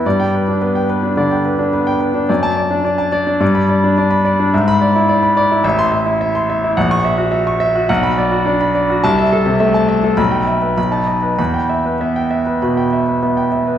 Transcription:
<<
  \new Staff \with { instrumentName = "Grand piano" } { \time 4/4 \key e \minor \tempo 4 = 106 << { r16 g''8 r2. r16 | r16 a''8 r4. b''8 r4 r16 | r16 b''8 r4. c'''8 r4 r16 | r16 cis'''8 r4. b''8 r4 r16 |
a''8 r4. b''8 r8 b''8 r8 | b''8 r2. r8 | } \\ { d''8 b'16 d'16 b'16 g''16 b'16 d'16 d''16 g''16 b'16 d'16 b'16 g''16 b'16 d'16 | d''8 d''16 d'16 d''16 a''16 d''16 d'16 d''8 d''16 d'16 d''16 b''16 d''16 d'16 | e''8 d''16 e'16 d''16 b''16 d''16 e'16 e''8 e''16 e'16 e''16 c'''16 e''16 e'16 | fis''8 e''16 fis'16 e''16 cis'''16 e''16 fis'16 fis''8 d''16 fis'16 d''16 b''16 d''16 fis'16 |
r16 e''16 a'16 c16 e''16 a''16 e''16 a'16 r16 g''16 e''16 b'16 r16 a''16 dis''16 b'16 | r16 g''16 e''16 b'16 e''16 g''16 e''16 b'16 b''16 g''16 e''16 b'16 e''16 g''16 e''16 b'16 | } >> }
  \new Staff \with { instrumentName = "Grand piano" } { \clef bass \time 4/4 \key e \minor g,4 b8 r8 d8 r8 b8 r8 | fis,4 d'8 r8 g,4 d'8 r8 | gis,2 a,,2 | ais,,2 b,,4 d'8 r8 |
c,4 a8 r8 b,,4 b,,16 dis'8 r16 | e,4 b8 r8 b,8 r8 b8 r8 | }
>>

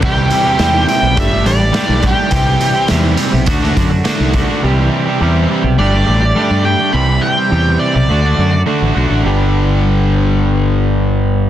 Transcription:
<<
  \new Staff \with { instrumentName = "Lead electric guitar" } { \time 4/4 \key g \major \tempo 4 = 104 g'4. g''8 e''8 d''4 g'8~ | g'4 r2. | r2 d''4. g''8 | b''8 g''4 d''4. r4 |
r1 | }
  \new Staff \with { instrumentName = "Overdriven electric guitar" } { \time 4/4 \key g \major <c g c' e' g'>16 <c' e' g'>8 <c' e' g'>16 <c g c' e' g'>8 <g c' e' g'>8 <g a d' g'>16 <a d' g'>8. <g a d' g'>8 <g a d' g'>16 <a d' g'>16 | <c e g c' g'>16 <g c' g'>8 <g c' g'>16 <c e g c' g'>8 <e g c' g'>8 <d a d' fis'>16 <a d' fis'>8. <d a d' fis'>8 <d a d' fis'>16 <a d' fis'>16 | <c e g c' g'>16 <g c' g'>8 <g c' g'>16 <c e g c' g'>8 <e g c' g'>8 <g a d' g'>16 <a d' g'>8. <g a d' g'>8 <g a d' g'>16 <a d' g'>16 | <c e g c' g'>16 <g c' g'>8 <g c' g'>16 <c e g c' g'>8 <e g c' g'>8 <d a d' fis'>16 <a d' fis'>8. <d a d' fis'>8 <d a d' fis'>16 <a d' fis'>16 |
<g, d g>1 | }
  \new Staff \with { instrumentName = "Clean electric guitar" } { \time 4/4 \key g \major <c e g e'>8 <e g e'>16 <g e'>16 <c e g e'>8. <g b e'>16 <g a d' g'>16 <a d' g'>16 <g a d' g'>16 <a d' g'>16 <g a d' g'>8 <g a d' g'>16 <a d' g'>16 | <c e g g'>8 <e g g'>16 <g g'>16 <c e g g'>8. <g b g'>16 <d a d' fis'>16 <a d' fis'>16 <d a d' fis'>16 <a d' fis'>16 <d a d' fis'>8 <d a d' fis'>16 <a d' fis'>16 | <c e g g'>8 <e g g'>16 <g g'>16 <c e g g'>8. <g b g'>16 <g a d' g'>16 <a d' g'>16 <g a d' g'>16 <a d' g'>16 <g a d' g'>8 <g a d' g'>16 <a d' g'>16 | <c e g g'>8 <e g g'>16 <g g'>16 <c e g g'>8. <g b g'>16 <d a d' fis'>16 <a d' fis'>16 <d a d' fis'>16 <a d' fis'>16 <d a d' fis'>8 <d a d' fis'>16 <a d' fis'>16 |
<g, d g b d' g'>1 | }
  \new Staff \with { instrumentName = "Fingered electric bass" } { \clef bass \time 4/4 \key g \major c,8 r8 e,8 r16 b,,16 g,,8 a,,8 r16 b,,8 r16 | c,8 r8 e,8 r16 b,,16 d,8 fis,8 r16 c,8 r16 | c,8 r8 e,8 r16 b,,16 g,,8 a,,8 r16 g,8 r16 | c,8 r8 e,8 r16 b,,16 d,8 fis,8 r16 a,,16 b,,16 a,,16 |
g,,1 | }
  \new DrumStaff \with { instrumentName = "Drums" } \drummode { \time 4/4 <cymc bd>8 hh8 <hh sn>8 hh8 <hh bd>8 hh8 <hh sn>8 <hh bd>8 | <hh bd>8 hh8 <hh sn>8 hh8 <hh bd>16 sn16 <hh bd>8 <hh sn>8 <hh bd>8 | r4 r4 r4 r4 | r4 r4 r4 r4 |
r4 r4 r4 r4 | }
>>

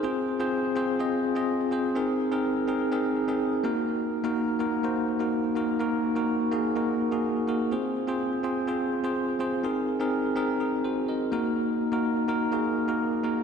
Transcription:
\new Staff \with { instrumentName = "Tine electric piano" } { \time 4/4 \key ees \dorian \tempo 4 = 125 << { r1 | r1 | r1 | r1 |
r1 | r2 <ees' aes'>8 <ges' c''>8 <bes' ees''>4 | r1 | } \\ { <c' f' aes' c''>8 r16 <c' f' aes' c''>8 r16 <c' f' aes' c''>16 r16 <c' f' aes' ees''>8 r16 <c' f' aes' ees''>8 r16 <c' f' aes' c''>16 r16 | <c' ees' aes' bes'>8 r16 <c' ees' aes' bes'>8 r16 <c' ees' aes' bes'>16 r16 <c' ees' aes' bes'>8 r16 <c' ees' aes' bes'>8 r16 <bes ees' ges' bes'>8~ | <bes ees' ges' bes'>8 r16 <bes ees' ges' bes'>8 r16 <bes ees' ges' bes'>16 r16 <bes ees' ges' c''>8 r16 <bes ees' ges' bes'>8 r16 <bes ees' ges' bes'>16 r16 | <bes ees' ges' bes'>8 r16 <bes ees' ges' bes'>8 r16 <bes ees' ges' aes'>16 r16 <bes ees' ges' bes'>8 r16 <bes ees' ges' aes'>8 r16 <bes ees' ges' bes'>16 r16 |
<c' f' aes' c''>8 r16 <c' f' aes' c''>8 r16 <c' f' aes' c''>16 r16 <c' f' aes' c''>8 r16 <c' f' aes' c''>8 r16 <c' f' aes' c''>16 r16 | <c' ees' aes' bes'>8 r16 <c' ees' aes' bes'>8 r16 <c' ees' aes' bes'>16 r4. r16 <bes ees' ges' bes'>8~ | <bes ees' ges' bes'>8 r16 <bes ees' ges' bes'>8 r16 <bes ees' ges' bes'>16 r16 <bes ees' ges' aes'>8 r16 <bes ees' ges' bes'>8 r16 <bes ees' ges' bes'>16 r16 | } >> }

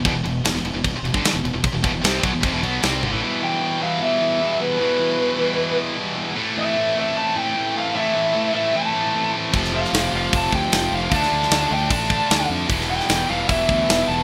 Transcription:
<<
  \new Staff \with { instrumentName = "Lead electric guitar" } { \time 4/4 \key e \phrygian \tempo 4 = 152 r1 | r1 | r8 g''4 f''8 e''4. b'8~ | b'2~ b'8 r4. |
r8 e''4 e''8 a''8 g''4 f''8 | e''4. e''8 a''4. r8 | r8 f''4 f''8 a''8 g''4 f''8 | a''4. g''8 a''4. r8 |
r8 g''4 f''8 e''4. a''8 | }
  \new Staff \with { instrumentName = "Distorted electric guitar" } { \time 4/4 \key e \phrygian <e, b,>16 <e, b,>16 <e, b,>8 <e, b,>16 <e, b,>16 <e, b,>16 <e, b,>16 <e, b,>16 r16 <e, b,>16 <g, d>16 r16 <e, b,>16 <e, b,>16 <e, b,>16 | r16 <e, b,>16 <e, b,>16 <e, b,>16 <c g c'>8 <b, fis>16 <e, b,>16 <f, c>16 <e, b,>16 <b, fis b>8 <c g c'>8 <g, d>16 <a, e>16 | <e g b e'>8 <e g b e'>8 <e g b e'>8 <e g b e'>8 <e g b e'>8 <e g b e'>8 <e g b e'>8 <e g b e'>8 | <e g b e'>8 <e g b e'>8 <e g b e'>8 <e g b e'>8 <e g b e'>8 <e g b e'>8 <e g b e'>8 <e g b e'>8 |
<a, e a c' e'>8 <a, e a c' e'>8 <a, e a c' e'>8 <a, e a c' e'>8 <a, e a c' e'>8 <a, e a c' e'>8 <a, e a c' e'>8 <a, e a c' e'>8 | <a, e a c' e'>8 <a, e a c' e'>8 <a, e a c' e'>8 <a, e a c' e'>8 <a, e a c' e'>8 <a, e a c' e'>8 <a, e a c' e'>8 <a, e a c' e'>8 | <f a c' f'>8 <f a c' f'>8 <f a c' f'>8 <f a c' f'>8 <f a c' f'>8 <f a c' f'>8 <f a c' f'>8 <f a c' f'>8 | <d a d' f'>8 <d a d' f'>8 <d a d' f'>8 <d a d' f'>8 <d a d' f'>8 <d a d' f'>8 <d a d' f'>8 <d a d' f'>8 |
<e g b e'>8 <e g b e'>8 <e g b e'>8 <e g b e'>8 <e g b e'>8 <e g b e'>8 <e g b e'>8 <e g b e'>8 | }
  \new Staff \with { instrumentName = "Distorted electric guitar" } { \clef bass \time 4/4 \key e \phrygian <e, b,>16 <e, b,>16 <e, b,>8 <e, b,>16 <e, b,>16 <e, b,>16 <e, b,>16 <e, b,>16 r16 <e, b,>16 <g, d>16 r16 <e, b,>16 <e, b,>16 <e, b,>16 | r16 <e, b,>16 <e, b,>16 <e, b,>16 <c g c'>8 <b, fis>16 <e, b,>16 <f, c>16 <e, b,>16 <b, fis b>8 <c g c'>8 <g, d>16 <a, e>16 | <e, b, e>1 | <e, b, e>1 |
<a, e a>1 | <a, e a>1 | <f, c f>1 | <d a d'>1 |
<e, b, e>1 | }
  \new Staff \with { instrumentName = "Distorted electric guitar" } { \clef bass \time 4/4 \key e \phrygian <e, b,>16 <e, b,>16 <e, b,>8 <e, b,>16 <e, b,>16 <e, b,>16 <e, b,>16 <e, b,>16 r16 <e, b,>16 <g, d>16 r16 <e, b,>16 <e, b,>16 <e, b,>16 | r16 <e, b,>16 <e, b,>16 <e, b,>16 <c g c'>8 <b, fis>16 <e, b,>16 <f, c>16 <e, b,>16 <b, fis b>8 <c g c'>8 <g, d>16 <a, e>16 | <e, b, e>4. <e, b, e>2~ <e, b, e>8 | <e, b, e>4. <e, b, e>2~ <e, b, e>8 |
<a, e a>4. <a, e a>2~ <a, e a>8 | <a, e a>4. <a, e a>2~ <a, e a>8 | <f, c f>4. <f, c f>2~ <f, c f>8 | <d a d'>4. <d a d'>2~ <d a d'>8 |
<e, b, e>4. <e, b, e>2~ <e, b, e>8 | }
  \new Staff \with { instrumentName = "Fingered electric bass" } { \clef bass \time 4/4 \key e \phrygian e,,16 e,,16 e,,8 e,,16 e,,16 e,,16 e,,16 e,,16 r16 e,,16 g,,16 r16 e,,16 e,,16 e,,16 | r16 e,,16 e,,16 e,,16 c,8 b,,16 e,,16 f,,16 e,,16 b,,8 c,8 g,,16 a,,16 | r1 | r1 |
r1 | r1 | f,,4 f,,8 f,,8 f,,8 d,8 f,,8 f,,8 | d,8 d,8 d,8 d,8 a,,4 d,8 f,8 |
e,,4 e,,8 e,,8 e,,8 d,8 e,,8 e,,8 | }
  \new DrumStaff \with { instrumentName = "Drums" } \drummode { \time 4/4 <cymc bd>8 cymc8 <cymc sn>16 sn16 cymc8 <cymc bd>8 cymc16 bd16 <cymc sn>8 cymc8 | <cymc bd>8 <cymc bd>8 <cymc sn>8 <cymc bd>8 <cymc bd>8 cymc8 <cymc sn>8 tommh8 | r4 r4 r4 r4 | r4 r4 r4 r4 |
r4 r4 r4 r4 | r4 r4 r4 r4 | <cymc bd>16 sn8 sn16 <hho sn>4 <hho bd>8 bd8 <hho sn>4 | <hho bd>16 sn8 sn16 <hho sn>4 <hho bd>8 bd8 <hho sn>4 |
<hho bd>16 sn8 sn16 <hho sn>4 <hho bd>8 bd8 <hho sn>4 | }
>>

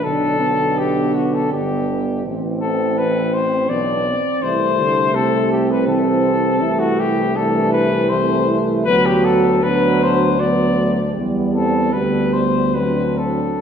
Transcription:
<<
  \new Staff \with { instrumentName = "Flugelhorn" } { \time 3/4 \key a \dorian \tempo 4 = 80 a'4 g'8 fis'16 a'16 g'4 | r8 a'8 b'8 c''8 d''4 | c''4 a'8 g'16 b'16 a'4~ | a'16 fis'16 g'8 a'8 b'8 c''8. r16 |
b'16 g'16 a'8 b'8 c''8 d''4 | r8 a'8 b'8 c''8 b'8 a'8 | }
  \new Staff \with { instrumentName = "French horn section" } { \time 3/4 \key a \dorian d'2 b4 | c'2 d'8 c'8 | e'8 a8 c'2 | e'4 d'4 c'8 e'8 |
fis'4 d'4 b8 a8 | g8 c'8 b4 d'4 | }
  \new Staff \with { instrumentName = "Euphonium" } { \time 3/4 \key a \dorian d'8 b4. d'4 | c'2 b8 r8 | a2 c'4 | a4 a4 a4 |
b4 b4 b4 | b4 b4 c'4 | }
  \new Staff \with { instrumentName = "Trombone" } { \clef bass \time 3/4 \key a \dorian d2. | e2~ e8 r8 | e8 d8 c4 e4 | e4 e4 e4 |
fis4 fis4 fis4 | g4 g4 fis4 | }
  \new Staff \with { instrumentName = "Tuba" } { \clef bass \time 3/4 \key a \dorian b,,2 g,,4 | a,,2 b,,8 r8 | c,2. | c,2. |
d,2. | e,4 d,2 | }
>>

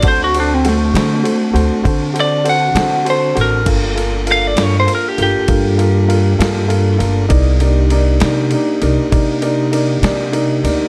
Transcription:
<<
  \new Staff \with { instrumentName = "Lead electric guitar" } { \time 12/8 \key g \minor \tempo 4. = 66 c''16 fis'16 d'16 c'16 a2 r8 d''8 fis''4 c''8 bes'8 | r4 f''16 d''16 cis''16 c''16 bes'16 g'16 g'2. r8 | r1. | }
  \new Staff \with { instrumentName = "Upright piano" } { \time 12/8 \key g \minor <fis' a' c''>8 <fis' a' c''>8 <fis' a' c''>8 <fis' a' c''>8 <fis' a' c''>8 <fis' a' c''>8 <fis' a' c''>8 <fis' a' c''>8 <fis' a' c''>8 <fis' a' c''>8 <fis' a' c''>8 <fis' a' c''>8 | <f' a' bes'>8 <f' a' bes'>8 <f' a' bes'>8 <f' a' bes'>8 <f' a' bes'>8 <f' a' bes'>8 <f' a' bes'>8 <f' a' bes'>8 <f' a' bes'>8 <f' a' bes'>8 <f' a' bes'>8 <f' a' bes'>8 | <ees' bes' d''>8 <ees' bes' d''>8 <ees' bes' d''>8 <ees' bes' d''>8 <ees' bes' d''>8 <ees' bes' d''>8 <ees' bes' d''>8 <ees' bes' d''>8 <ees' bes' d''>8 <ees' bes' d''>8 <ees' bes' d''>8 <ees' bes' d''>8 | }
  \new Staff \with { instrumentName = "Tonewheel organ" } { \time 12/8 \key g \minor <c' d' fis' a''>1. | <bes d' f' a'>1. | <b ees' e' aes'>8 <bes d' ees' g'>1~ <bes d' ees' g'>4. | }
  \new Staff \with { instrumentName = "Upright bass" } { \clef bass \time 12/8 \key g \minor d,4. d8 r8 d,16 r16 d4. d4 a,,8 | g,,4. g,8 r8 g,,16 r16 g,4. g,4 g,,8 | c,4. c8 r8 c,16 r16 c4. c4 d,8 | }
  \new DrumStaff \with { instrumentName = "Drums" } \drummode { \time 12/8 <bd cymr>8 cymr8 <cymr sn>8 <cymr sn>8 cymr8 cymr8 <bd cymr>8 cymr8 cymr8 <cymr sn>8 cymr8 cymr8 | <cymc bd cymr>8 cymr8 cymr8 <cymr sn>8 cymr8 cymr8 <bd cymr>8 cymr8 cymr8 <cymr sn>8 cymr8 cymr8 | <bd cymr>8 cymr8 cymr8 <cymr sn>8 cymr8 cymr8 <bd cymr>8 cymr8 cymr8 <cymr sn>8 cymr8 cymr8 | }
>>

